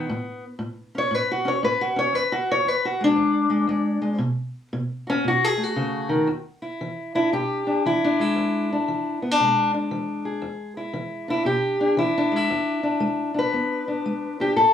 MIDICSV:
0, 0, Header, 1, 2, 480
1, 0, Start_track
1, 0, Tempo, 517241
1, 80, Time_signature, 4, 2, 24, 8
1, 13674, End_track
2, 0, Start_track
2, 0, Title_t, "Steel-string acoustic guitar"
2, 0, Program_c, 0, 25
2, 0, Note_on_c, 0, 59, 91
2, 88, Note_on_c, 0, 45, 82
2, 404, Note_off_c, 0, 59, 0
2, 529, Note_off_c, 0, 45, 0
2, 545, Note_on_c, 0, 45, 75
2, 880, Note_on_c, 0, 61, 46
2, 911, Note_on_c, 0, 73, 108
2, 996, Note_off_c, 0, 45, 0
2, 1030, Note_on_c, 0, 45, 78
2, 1063, Note_off_c, 0, 73, 0
2, 1063, Note_on_c, 0, 71, 97
2, 1209, Note_off_c, 0, 71, 0
2, 1220, Note_on_c, 0, 66, 93
2, 1334, Note_off_c, 0, 61, 0
2, 1345, Note_on_c, 0, 61, 56
2, 1367, Note_off_c, 0, 66, 0
2, 1374, Note_on_c, 0, 73, 95
2, 1478, Note_off_c, 0, 45, 0
2, 1512, Note_on_c, 0, 45, 80
2, 1522, Note_off_c, 0, 73, 0
2, 1526, Note_on_c, 0, 71, 102
2, 1679, Note_off_c, 0, 71, 0
2, 1682, Note_on_c, 0, 66, 101
2, 1810, Note_off_c, 0, 61, 0
2, 1821, Note_on_c, 0, 61, 53
2, 1837, Note_off_c, 0, 66, 0
2, 1844, Note_on_c, 0, 73, 113
2, 1958, Note_off_c, 0, 45, 0
2, 1969, Note_off_c, 0, 61, 0
2, 1974, Note_on_c, 0, 40, 75
2, 1995, Note_off_c, 0, 73, 0
2, 1995, Note_on_c, 0, 71, 111
2, 2153, Note_off_c, 0, 71, 0
2, 2154, Note_on_c, 0, 66, 101
2, 2312, Note_off_c, 0, 66, 0
2, 2334, Note_on_c, 0, 73, 115
2, 2428, Note_off_c, 0, 40, 0
2, 2458, Note_on_c, 0, 40, 76
2, 2489, Note_off_c, 0, 73, 0
2, 2489, Note_on_c, 0, 71, 91
2, 2639, Note_off_c, 0, 71, 0
2, 2647, Note_on_c, 0, 66, 93
2, 2790, Note_on_c, 0, 56, 53
2, 2798, Note_off_c, 0, 66, 0
2, 2821, Note_on_c, 0, 62, 112
2, 2909, Note_off_c, 0, 40, 0
2, 2932, Note_on_c, 0, 40, 75
2, 3235, Note_off_c, 0, 56, 0
2, 3246, Note_on_c, 0, 56, 52
2, 3386, Note_off_c, 0, 40, 0
2, 3410, Note_off_c, 0, 56, 0
2, 3410, Note_on_c, 0, 40, 73
2, 3422, Note_on_c, 0, 56, 54
2, 3716, Note_off_c, 0, 56, 0
2, 3727, Note_on_c, 0, 56, 52
2, 3864, Note_off_c, 0, 40, 0
2, 3880, Note_off_c, 0, 56, 0
2, 3883, Note_on_c, 0, 47, 84
2, 3922, Note_off_c, 0, 62, 0
2, 4341, Note_off_c, 0, 47, 0
2, 4388, Note_on_c, 0, 47, 79
2, 4704, Note_on_c, 0, 66, 51
2, 4729, Note_on_c, 0, 61, 111
2, 4833, Note_off_c, 0, 47, 0
2, 4864, Note_on_c, 0, 47, 76
2, 4868, Note_off_c, 0, 66, 0
2, 4877, Note_off_c, 0, 61, 0
2, 4899, Note_on_c, 0, 66, 103
2, 5052, Note_off_c, 0, 66, 0
2, 5052, Note_on_c, 0, 68, 101
2, 5172, Note_on_c, 0, 57, 50
2, 5228, Note_off_c, 0, 68, 0
2, 5228, Note_on_c, 0, 66, 98
2, 5312, Note_off_c, 0, 47, 0
2, 5347, Note_on_c, 0, 49, 72
2, 5653, Note_on_c, 0, 51, 71
2, 5660, Note_off_c, 0, 49, 0
2, 5802, Note_off_c, 0, 57, 0
2, 5822, Note_on_c, 0, 40, 81
2, 5823, Note_off_c, 0, 51, 0
2, 5847, Note_off_c, 0, 66, 0
2, 6144, Note_on_c, 0, 64, 50
2, 6272, Note_off_c, 0, 40, 0
2, 6319, Note_on_c, 0, 52, 62
2, 6634, Note_on_c, 0, 62, 46
2, 6636, Note_off_c, 0, 64, 0
2, 6639, Note_on_c, 0, 64, 89
2, 6761, Note_off_c, 0, 52, 0
2, 6794, Note_off_c, 0, 64, 0
2, 6795, Note_on_c, 0, 47, 59
2, 6805, Note_on_c, 0, 67, 86
2, 7112, Note_off_c, 0, 62, 0
2, 7116, Note_on_c, 0, 62, 48
2, 7240, Note_off_c, 0, 47, 0
2, 7278, Note_off_c, 0, 67, 0
2, 7290, Note_on_c, 0, 52, 63
2, 7297, Note_on_c, 0, 64, 90
2, 7461, Note_off_c, 0, 62, 0
2, 7465, Note_on_c, 0, 62, 79
2, 7605, Note_off_c, 0, 64, 0
2, 7606, Note_on_c, 0, 56, 52
2, 7616, Note_on_c, 0, 64, 95
2, 7729, Note_off_c, 0, 52, 0
2, 7757, Note_on_c, 0, 40, 73
2, 8084, Note_off_c, 0, 62, 0
2, 8097, Note_on_c, 0, 62, 49
2, 8125, Note_off_c, 0, 56, 0
2, 8203, Note_off_c, 0, 40, 0
2, 8243, Note_on_c, 0, 52, 59
2, 8555, Note_off_c, 0, 62, 0
2, 8559, Note_on_c, 0, 59, 48
2, 8568, Note_off_c, 0, 64, 0
2, 8643, Note_off_c, 0, 59, 0
2, 8643, Note_on_c, 0, 62, 39
2, 8687, Note_off_c, 0, 52, 0
2, 8723, Note_on_c, 0, 47, 66
2, 8733, Note_on_c, 0, 56, 44
2, 9031, Note_off_c, 0, 62, 0
2, 9042, Note_on_c, 0, 62, 48
2, 9168, Note_off_c, 0, 47, 0
2, 9198, Note_on_c, 0, 52, 60
2, 9513, Note_on_c, 0, 68, 44
2, 9646, Note_off_c, 0, 52, 0
2, 9668, Note_on_c, 0, 40, 78
2, 9695, Note_off_c, 0, 62, 0
2, 9991, Note_off_c, 0, 68, 0
2, 9995, Note_on_c, 0, 64, 49
2, 10122, Note_off_c, 0, 40, 0
2, 10148, Note_on_c, 0, 52, 65
2, 10469, Note_on_c, 0, 62, 49
2, 10485, Note_off_c, 0, 64, 0
2, 10489, Note_on_c, 0, 64, 87
2, 10497, Note_off_c, 0, 56, 0
2, 10603, Note_off_c, 0, 52, 0
2, 10625, Note_on_c, 0, 47, 66
2, 10633, Note_off_c, 0, 64, 0
2, 10636, Note_on_c, 0, 67, 100
2, 10944, Note_off_c, 0, 62, 0
2, 10955, Note_on_c, 0, 62, 56
2, 11082, Note_off_c, 0, 47, 0
2, 11107, Note_on_c, 0, 52, 63
2, 11118, Note_off_c, 0, 67, 0
2, 11122, Note_on_c, 0, 64, 86
2, 11283, Note_off_c, 0, 62, 0
2, 11299, Note_on_c, 0, 62, 93
2, 11430, Note_on_c, 0, 56, 49
2, 11444, Note_off_c, 0, 64, 0
2, 11469, Note_on_c, 0, 64, 95
2, 11563, Note_off_c, 0, 52, 0
2, 11581, Note_off_c, 0, 56, 0
2, 11602, Note_on_c, 0, 40, 77
2, 11897, Note_off_c, 0, 62, 0
2, 11908, Note_on_c, 0, 62, 50
2, 12051, Note_off_c, 0, 40, 0
2, 12067, Note_on_c, 0, 56, 66
2, 12372, Note_off_c, 0, 62, 0
2, 12383, Note_on_c, 0, 62, 45
2, 12418, Note_off_c, 0, 64, 0
2, 12422, Note_on_c, 0, 71, 92
2, 12523, Note_off_c, 0, 56, 0
2, 12550, Note_on_c, 0, 40, 61
2, 12561, Note_on_c, 0, 59, 43
2, 12868, Note_off_c, 0, 62, 0
2, 12879, Note_on_c, 0, 62, 49
2, 13004, Note_off_c, 0, 40, 0
2, 13045, Note_on_c, 0, 56, 67
2, 13351, Note_off_c, 0, 62, 0
2, 13363, Note_on_c, 0, 62, 49
2, 13370, Note_off_c, 0, 71, 0
2, 13374, Note_on_c, 0, 67, 87
2, 13491, Note_off_c, 0, 56, 0
2, 13503, Note_off_c, 0, 59, 0
2, 13507, Note_off_c, 0, 62, 0
2, 13513, Note_off_c, 0, 67, 0
2, 13514, Note_on_c, 0, 45, 69
2, 13517, Note_on_c, 0, 69, 90
2, 13674, Note_off_c, 0, 45, 0
2, 13674, Note_off_c, 0, 69, 0
2, 13674, End_track
0, 0, End_of_file